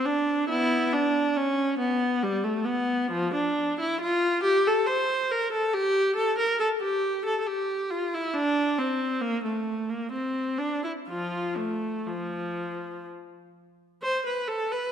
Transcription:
0.05 D4
0.49 B3 E4
0.93 D4
1.37 C#4
1.79 B3
2.23 G3
2.44 A3
2.65 B3
3.11 F3
3.34 D4
3.80 E4
4.01 F4
4.44 G4
4.67 A4
4.87 C5
5.31 A#4
5.52 A4
5.73 G4
6.16 A4
6.39 A#4
6.60 A4
6.81 G4
7.25 A4
7.40 A4
7.47 G4
7.91 F4
8.14 E4
8.34 D4
8.78 C4
9.21 A#3
9.44 A3
9.90 A#3
10.12 C4
10.58 D4
10.83 E4
11.09 F3 F4
11.57 A3
12.07 F3
14.02 C5
14.26 B4
14.48 A4
14.72 B4

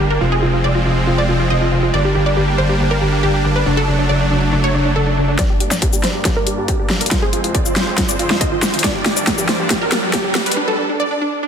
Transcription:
Already playing: G1 G3 A#3 D4, sub drop
0.10 A#4
0.21 F1 F3 G#3 C4 F4
0.32 G#4
0.43 F4
0.54 F4
0.64 D5
0.75 F4
0.86 F4
1.07 F4
1.18 D5
1.29 F4
1.40 F4
1.50 D#5
1.61 F4
1.72 F4
1.83 F4
1.93 G1 G3 A#3 D4 D5
2.05 G4
2.15 G4
2.26 D5
2.37 G4
2.48 G4
2.58 C5
2.69 G4
2.80 G4
2.91 A#4
3.01 G4
3.12 G4
3.23 G4
3.34 G4
3.45 G4
3.56 B4
3.66 F#1 F#3 A3 D4
3.77 A4
3.88 D4
3.99 D4
4.09 D5
4.21 D4
4.31 D4
4.53 D4
4.64 C#5
4.74 D4
4.85 D4
4.96 A4
5.07 D4
5.17 D4
5.28 D4
5.39 G2 G3 A#3 D4 D5, kick, snare, closed hi-hat, riser
5.50 G4
5.60 G4, closed hi-hat
5.71 D5, snare, closed hi-hat, shaker
5.82 G4, kick, closed hi-hat
5.93 G4, shaker
6.04 C5, snare, closed hi-hat
6.15 G4
6.25 G4, kick, snare, closed hi-hat
6.36 A#4
6.47 G4, closed hi-hat
6.58 G4
6.68 G4, kick, closed hi-hat
6.80 G4
6.90 G4, snare
7.01 A#4, closed hi-hat
7.06 closed hi-hat
7.11 F2 F3 G#3 C4 F4 C5, kick, snare, closed hi-hat
7.22 G#4
7.33 F4, closed hi-hat
7.44 F4, closed hi-hat
7.54 D5, kick, closed hi-hat
7.66 F4, shaker
7.76 F4, snare, closed hi-hat
7.98 F4, kick, snare, closed hi-hat
8.09 D5, shaker
8.19 F4, closed hi-hat
8.30 F4, snare
8.41 D#5, kick, closed hi-hat
8.52 F4
8.62 F4, snare, shaker
8.73 F4, closed hi-hat
8.79 closed hi-hat
8.84 G2 G3 A#3 D4 D5, kick, snare, closed hi-hat
8.95 G4
9.06 G4, snare, closed hi-hat
9.17 D5, closed hi-hat, shaker
9.27 G4, kick, snare, closed hi-hat
9.38 G4, shaker
9.49 C5, snare, closed hi-hat
9.60 G4
9.70 G4, kick, snare, closed hi-hat
9.81 A#4
9.92 G4, snare, closed hi-hat
10.03 G4
10.13 G4, kick, snare, closed hi-hat
10.24 G4
10.35 G4, snare
10.46 B4, closed hi-hat
10.52 closed hi-hat
10.57 D4
10.68 A4
10.78 D4
10.89 D4
11.00 D5
11.11 D4
11.22 D4
11.43 D4

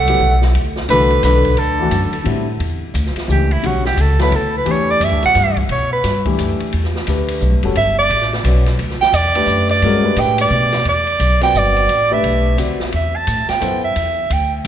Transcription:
Already playing: C2 A3 F#5
0.07 F#3 B3 E4 G4, ride
0.20 B1
0.42 snare
0.54 D2, ride
0.76 snare
0.89 C2 D3 E3 A3 D4 F#4 B4, hi-hat pedal, ride
1.10 ride
1.23 B1 D3 B4, snare, hi-hat pedal, ride
1.45 kick, ride
1.57 D2 D3 A4, ride
1.80 E3 A3 D4 F#4
1.91 F#2, hi-hat pedal, ride
2.12 muted upright bass stroke, ride
2.24 A2 D3 G3 C4 E4, ride
2.59 E2, ride
2.94 D2, hi-hat pedal, ride
3.06 snare
3.16 snare, ride
3.28 C#2 E3 A3 D4 G4, hi-hat pedal
3.51 E4, ride
3.62 B1 D3 G3 C#4 F#4, ride
3.85 G4, snare
3.96 C#2, hi-hat pedal, ride
4.01 A4
4.19 F#3 B3 E4 A4 B4, snare, ride
4.31 D2, ride
4.36 A4
4.57 B4
4.65 E2 E3 A3 D4 G4, ride
4.71 C#5
4.91 D5
5.00 F#2 E5, hi-hat pedal, ride
5.12 D2
5.22 B1 F#5, snare, ride
5.35 G2, snare, hi-hat pedal, ride
5.57 kick, ride
5.69 B2 C#5, ride
5.93 B4
6.04 G2, snare, hi-hat pedal, ride
6.25 E3 A3 D4 G4, kick, ride
6.38 F#2, hi-hat pedal, ride
6.60 muted upright bass stroke, ride
6.72 E2, ride
6.84 snare
6.96 snare
7.07 D2 A3 D4 G4 B4, hi-hat pedal, ride
7.28 ride
7.41 B1, hi-hat pedal
7.52 G1
7.63 E1 G3 C#4 F#4 A4, ride
7.75 G1 E5, ride
7.99 D5
8.09 A1, ride
8.22 snare
8.33 snare
8.44 B1 C#4 F#4 B4 D5, hi-hat pedal, ride
8.66 snare, ride
8.78 D2, ride
8.90 snare
9.00 G5, muted upright bass stroke, snare
9.12 E2 D5, hi-hat pedal, ride
9.35 A3 D4 G4 B4, ride
9.46 F#2, hi-hat pedal
9.69 D5, ride
9.82 G2 G#3 C#4 F#4 A#4, ride
10.03 A3 D4 G4 B4
10.16 A2 G5, hi-hat pedal, ride
10.38 D5, ride
10.50 B2
10.72 snare, ride
10.85 E2 D5, ride
11.07 ride
11.19 B1, hi-hat pedal, ride
11.41 C4 F#4 B4 D5 G5, snare, ride
11.54 G1, hi-hat pedal
11.58 D5
11.76 ride
11.89 A1, ride
12.10 A3 D4 G4 B4 E5
12.23 B1, ride
12.57 D2 C4 F#4 B4 D5, hi-hat pedal, ride
12.80 muted upright bass stroke, snare
12.92 E2 E5, ride
13.15 A5
13.27 A2, hi-hat pedal, ride
13.49 G5, muted upright bass stroke, snare, ride
13.60 F#2 B3 E4 A4 C5, hi-hat pedal, ride
13.84 E5
13.96 E2, ride
14.30 D2 G5, ride

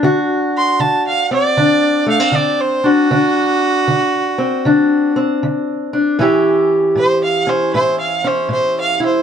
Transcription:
Already playing: D4
0.03 D3 F#4
0.57 C6
0.80 D3 A5
1.07 F5
1.31 C4 D5
1.57 D3 D4
2.06 A3 F5
2.20 C4
2.32 D3 D5
2.61 C5
2.84 D4 F#4
3.11 D3 D4
3.88 D3
4.38 C4
4.65 D3 D4
5.16 C4
5.43 D3
5.93 D4
6.19 A2 E3 C#4 E4 G4
6.95 A2 C5
7.24 F5
7.47 C#4 C5
7.73 A2 E4 C5
8.00 F5
8.24 C#4 C5
8.49 A2 C5
8.80 F5
9.00 E4
9.06 C5

